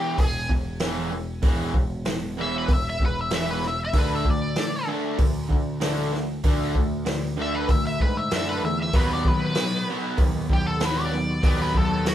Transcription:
Already playing: overdriven electric guitar E2 B2 E3, lead electric guitar G4
0.18 picked electric bass E1, overdriven electric guitar E2 B2, lead electric guitar G#4, kick, open hi-hat, cowbell
0.49 picked electric bass E1, overdriven electric guitar E2 B2, kick
0.80 overdriven electric guitar E2 B2 E3, snare, open hi-hat, cowbell
1.13 overdriven electric guitar E2 B2, cowbell
1.42 picked electric bass E1, overdriven electric guitar E2 B2 E3, kick, open hi-hat, cowbell
1.74 picked electric bass E1, overdriven electric guitar E2 B2, kick
2.05 overdriven electric guitar E2 B2, snare, open hi-hat, cowbell
2.37 overdriven electric guitar E2 B2 E3, lead electric guitar E5, cowbell
2.58 lead electric guitar B4
2.68 picked electric bass E1, overdriven electric guitar E2 B2, kick, open hi-hat, cowbell
2.73 lead electric guitar E5
2.90 lead electric guitar E5
3.00 picked electric bass E1, overdriven electric guitar E2 B2, kick
3.06 lead electric guitar B4
3.21 lead electric guitar E5
3.30 overdriven electric guitar E2 B2 E3, snare, open hi-hat, cowbell
3.35 lead electric guitar E5
3.51 lead electric guitar B4
3.63 overdriven electric guitar E2 B2, snare, cowbell
3.68 lead electric guitar E5
3.85 lead electric guitar E5
3.93 picked electric bass D2, overdriven electric guitar D3 A3 D4, kick, open hi-hat, cowbell
3.99 lead electric guitar B4
4.15 lead electric guitar E5
4.25 picked electric bass D2, overdriven electric guitar D3 A3, kick
4.30 lead electric guitar D5
4.56 overdriven electric guitar D3, snare, open hi-hat, cowbell
4.60 overdriven electric guitar A3
4.88 overdriven electric guitar D3 A3 D4, cowbell
5.18 picked electric bass D2, overdriven electric guitar D3 A3, kick, open hi-hat, cowbell
5.50 picked electric bass D2, overdriven electric guitar D3 A3, kick
5.81 overdriven electric guitar D3 A3 D4, snare, open hi-hat, cowbell
6.13 overdriven electric guitar D3 A3, snare, cowbell
6.44 picked electric bass D2, overdriven electric guitar D3 D4, kick, open hi-hat, cowbell
6.48 overdriven electric guitar A3
6.75 picked electric bass D2, overdriven electric guitar D3 A3, kick
7.06 overdriven electric guitar D3 A3, snare, open hi-hat, cowbell
7.37 overdriven electric guitar D3 A3 D4, cowbell
7.42 lead electric guitar E5
7.55 lead electric guitar B4
7.68 picked electric bass D2, overdriven electric guitar D3 A3, lead electric guitar E5, kick, open hi-hat, cowbell
7.87 lead electric guitar E5
8.00 picked electric bass G#2, overdriven electric guitar D3 A3, lead electric guitar B4, kick
8.17 lead electric guitar E5
8.31 picked electric bass F#2, overdriven electric guitar D3 A3 D4, lead electric guitar E5, snare, open hi-hat, cowbell
8.49 lead electric guitar B4
8.62 picked electric bass E2, overdriven electric guitar D3 A3, tonewheel organ B3 C4, lead electric guitar E5, cowbell
8.67 tonewheel organ D4 E4
8.73 tonewheel organ F4 G4
8.79 tonewheel organ A4 B4, lead electric guitar E5
8.84 tonewheel organ C5 D5
8.90 tonewheel organ E5 F5, kick, open hi-hat, cowbell
8.94 picked electric bass D#2, overdriven electric guitar B2 F#3 B3, tonewheel organ B3 D#4 F#4, lead electric guitar B4
9.13 lead electric guitar D5
9.25 picked electric bass D#2, overdriven electric guitar B2 F#3, lead electric guitar B4, kick
9.55 overdriven electric guitar B2 F#3, snare, open hi-hat, cowbell
9.86 cowbell
9.90 overdriven electric guitar B2 F#3 B3
10.18 picked electric bass D#2, overdriven electric guitar B2, kick, open hi-hat, cowbell
10.22 overdriven electric guitar F#3
10.49 picked electric bass D#2, overdriven electric guitar B2 F#3, lead electric guitar G4, kick
10.67 lead electric guitar A4
10.80 overdriven electric guitar B2, snare, open hi-hat, cowbell
10.84 overdriven electric guitar F#3 B3, lead electric guitar B4
11.00 lead electric guitar D5
11.12 overdriven electric guitar B2 F#3, cowbell
11.42 picked electric bass D#2, overdriven electric guitar B2 F#3, tonewheel organ F#4 B4 D#5, kick, open hi-hat, cowbell
11.47 overdriven electric guitar B3
11.62 lead electric guitar B4
11.74 picked electric bass D#2, overdriven electric guitar B2 F#3, lead electric guitar A4, kick
12.05 overdriven electric guitar B2 F#3, lead electric guitar F#4, snare, open hi-hat, cowbell

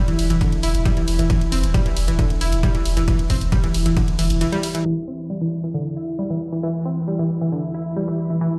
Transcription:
Already playing: ambient pad E3 E4
0.08 synth arpeggio sound E3, ride
0.19 sub bass E1, open hi-hat, ride
0.30 sub bass E1, synth arpeggio sound E3, closed hi-hat, ride
0.41 synth arpeggio sound D3, kick, closed hi-hat, ride
0.52 ride
0.63 sub bass E1, synth arpeggio sound E4, open hi-hat, ride
0.75 sub bass E1, closed hi-hat, ride
0.85 synth arpeggio sound G3, kick, closed hi-hat, ride
0.97 synth arpeggio sound E3, ride
1.08 sub bass E1, open hi-hat, ride
1.19 sub bass E1, synth arpeggio sound E3, closed hi-hat, ride
1.30 synth arpeggio sound E3, kick, closed hi-hat, ride
1.41 ride
1.52 sub bass E1, synth arpeggio sound C4, open hi-hat, ride
1.63 sub bass E1, closed hi-hat, ride
1.74 synth arpeggio sound G3, kick, closed hi-hat, ride
1.86 synth arpeggio sound E3, ride
1.97 sub bass E1, open hi-hat, ride
2.08 sub bass E1, synth arpeggio sound E3, closed hi-hat, ride
2.19 synth arpeggio sound D3, kick, closed hi-hat, ride
2.30 ride
2.41 sub bass E1, synth arpeggio sound E4, open hi-hat, ride
2.52 sub bass E1, closed hi-hat, ride
2.63 synth arpeggio sound G3, kick, closed hi-hat, ride
2.75 synth arpeggio sound E3, ride
2.85 sub bass E1, open hi-hat, ride
2.97 sub bass E1, synth arpeggio sound E3, closed hi-hat, ride
3.08 synth arpeggio sound E3, kick, closed hi-hat, ride
3.19 ride
3.30 sub bass E1, synth arpeggio sound C4, kick, open hi-hat, ride
3.41 sub bass E1, closed hi-hat, ride
3.52 synth arpeggio sound G3, kick, closed hi-hat, ride
3.64 synth arpeggio sound E3, ride
3.74 sub bass E1, open hi-hat, ride
3.86 sub bass E1, synth arpeggio sound E3, closed hi-hat, ride
3.97 synth arpeggio sound D3, kick, closed hi-hat, ride
4.08 ride
4.19 sub bass E1, synth arpeggio sound E3, open hi-hat, ride
4.30 sub bass E1, closed hi-hat, ride
4.41 synth arpeggio sound E3, closed hi-hat, ride
4.52 synth arpeggio sound G3, ride
4.63 open hi-hat, ride
4.75 synth arpeggio sound E3, closed hi-hat, ride
4.85 synth arpeggio sound E3, ambient pad E3 E4
5.08 synth arpeggio sound C4
5.30 synth arpeggio sound G3
5.41 synth arpeggio sound E3
5.64 synth arpeggio sound E3
5.74 synth arpeggio sound D3
5.97 synth arpeggio sound E4
6.19 synth arpeggio sound G3
6.30 synth arpeggio sound E3
6.52 synth arpeggio sound E3
6.63 synth arpeggio sound E3
6.85 synth arpeggio sound C4
7.08 synth arpeggio sound G3
7.19 synth arpeggio sound E3
7.41 synth arpeggio sound E3
7.52 synth arpeggio sound D3
7.74 synth arpeggio sound E4
7.97 synth arpeggio sound G3
8.08 synth arpeggio sound E3
8.30 synth arpeggio sound E3
8.41 synth arpeggio sound E3, riser

